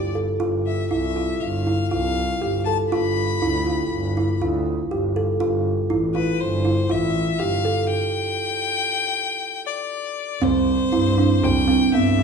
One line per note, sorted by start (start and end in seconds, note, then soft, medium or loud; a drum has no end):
0.00 0.36 G1 medium
0.00 0.13 G4 medium
0.00 0.12 D5 medium
0.15 0.38 A4 medium
0.40 0.86 G1 medium
0.40 0.86 F4 medium
0.66 0.90 E5 medium
0.91 1.37 C2 medium
0.91 1.14 E4 medium
0.91 1.42 E5 medium
1.16 1.62 F4 medium
1.40 1.87 G1 medium
1.40 1.91 F5 medium
1.67 1.89 E4 medium
1.91 2.37 C2 medium
1.91 2.37 F4 medium
1.91 2.63 F5 medium
2.41 2.87 G1 medium
2.41 2.64 G4 medium
2.65 2.89 A4 medium
2.65 2.77 A5 medium
2.90 3.37 G1 medium
2.90 3.37 F4 medium
2.90 4.36 B5 medium
3.42 3.86 D2 medium
3.42 3.64 E4 medium
3.67 4.11 F4 medium
3.91 4.36 G1 medium
4.17 4.39 E4 medium
4.40 4.85 D2 medium
4.40 4.86 F4 medium
4.90 5.35 G1 medium
4.90 5.13 G4 medium
5.16 5.38 A4 medium
5.40 5.85 G1 medium
5.40 5.85 F4 medium
5.90 6.34 A1 medium
5.90 6.12 E4 medium
6.15 6.59 F4 medium
6.15 6.42 B4 medium
6.40 6.85 G1 medium
6.40 6.92 C5 medium
6.65 6.87 E4 medium
6.89 7.34 A1 medium
6.89 7.34 F4 medium
6.89 7.41 E5 medium
7.39 7.84 G1 medium
7.39 7.62 G4 medium
7.39 7.89 F5 medium
7.65 7.87 A4 medium
7.90 9.62 G5 medium
9.66 10.44 D5 medium
10.41 10.87 C2 medium
10.41 10.87 C4 medium
10.41 11.46 C5 medium
10.41 frame drum medium
10.92 11.37 G2 medium
10.92 11.15 E4 medium
10.92 frame drum soft
11.18 11.63 D4 medium
11.42 11.88 C2 medium
11.42 11.94 G5 medium
11.42 frame drum medium
11.68 11.90 C4 medium
11.93 12.23 G2 medium
11.93 12.23 B3 medium
11.93 12.23 E5 medium
12.18 frame drum soft